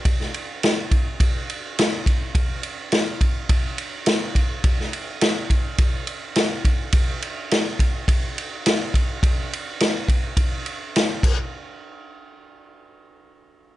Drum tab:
CC |----------------|----------------|----------------|----------------|
RD |x-x-x-x-x-x-x-x-|x-x-x-x-x-x-x-x-|x-x-x-x-x-x-x-x-|x-x-x-x-x-x-x-x-|
SD |-o--o-------o---|----o-------o---|-o--o-------o---|----o-------o---|
BD |o-----o-o-----o-|o-----o-o-----o-|o-----o-o-----o-|o-----o-o-----o-|

CC |--------------x-|----------------|
RD |x-x-x-x-x-x-x---|----------------|
SD |----o-------o---|----------------|
BD |o-----o-o-----o-|----------------|